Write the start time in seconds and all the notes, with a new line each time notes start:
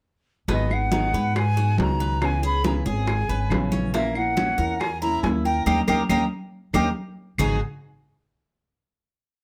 0.48 G#1 D#3 F#3 B3 D#4 G#4 D#5, high bongo, high conga
0.70 B3 D#4 G#4 F#5, high bongo, high conga, claves
0.91 D#3 F#3 B3 D#4 G#4, high bongo, high conga
1.13 G#2 B3 D#4 G#4 B4, high bongo
1.35 G#5, muted nylon-string guitar stroke, high bongo, high conga, claves
1.57 B3 D#4 F#4 G#4, high conga
1.77 C#2 D#3 F#3 B3 D#4 G#4, high bongo, low bongo, high conga
1.81 A#5
2.00 B4, high bongo, high conga
2.21 C#3 E3 B3 C#4 G#4, high bongo, high conga, claves
2.25 G#5
2.42 B3 C#4 G#4 B5, high bongo, high conga
2.64 C#3 E3 B3 C#4 G#4 B4 A#5, high bongo, high conga
2.86 G#1 B3 C#4 G#4 G#5, high bongo, high conga
3.07 muted nylon-string guitar stroke, high bongo, high conga, claves
3.29 G#1 B3 C#4 G#4 B4, high conga
3.50 A#1 C#3 E3 B3 C#4 G#4, high bongo, low bongo, high conga, claves
3.72 C#4, high bongo, high conga
3.93 E3 A#3 C#4 E4 E5, high bongo, high conga
4.15 A#3 C#4 E4 F#5, high bongo, high conga, claves
4.36 E3 A#3 C#4 E4, high bongo, high conga
4.58 E2 A#3 C#4 E4 A#4, high bongo
4.80 G#5, muted nylon-string guitar stroke, high bongo, high conga, claves
5.01 A#3 C#4 E4 A#5, high conga
5.23 D#2 A#3 C#4 E4 G#5, high bongo, low bongo, high conga
5.45 A#4 G5, high bongo, high conga
5.66 D#2 A#3 C#4 D#4 G4 A#4 G5, low bongo, high conga, claves
5.87 D#2 A#3 C#4 D#4 G4 A#4 G5, low bongo, high conga, claves
6.09 D#2 A#3 C#4 D#4 G4 A#4 G5, low bongo, high conga, claves
6.73 D#2 A#3 C#4 D#4 G4 A#4 G5, low bongo, high conga, claves
7.38 G#1 G#2 D#3 F#3 G#3 B3 D#4 F#4 G#4 G#5, low bongo, low conga, claves